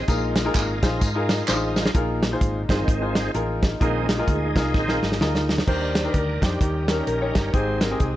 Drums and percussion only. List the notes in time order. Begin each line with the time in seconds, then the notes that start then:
0.08 kick, closed hi-hat, tambourine
0.36 snare, closed hi-hat, tambourine
0.55 kick, clap, closed hi-hat, tambourine
0.83 kick, snare, closed hi-hat, tambourine
1.01 kick, closed hi-hat, tambourine
1.29 snare, closed hi-hat, tambourine
1.48 snare, clap, tambourine
1.76 snare, tambourine
1.86 snare
1.95 kick, closed hi-hat
2.23 snare, closed hi-hat
2.41 kick, closed hi-hat
2.69 kick, snare, closed hi-hat
2.88 kick, closed hi-hat
3.15 snare, closed hi-hat
3.35 closed hi-hat
3.63 kick, snare, closed hi-hat
3.81 kick, closed hi-hat
4.09 snare, closed hi-hat
4.28 kick, closed hi-hat
4.56 kick, snare, closed hi-hat
4.74 kick, snare
4.88 snare
5.03 snare
5.12 snare
5.21 snare
5.35 snare
5.49 snare
5.58 snare
5.68 kick, crash
5.95 snare, closed hi-hat
6.14 kick, closed hi-hat
6.42 kick, snare, closed hi-hat
6.61 kick, closed hi-hat
6.88 snare, closed hi-hat
7.07 closed hi-hat
7.35 kick, snare, closed hi-hat
7.54 kick, closed hi-hat
7.81 snare, closed hi-hat
8.00 kick, closed hi-hat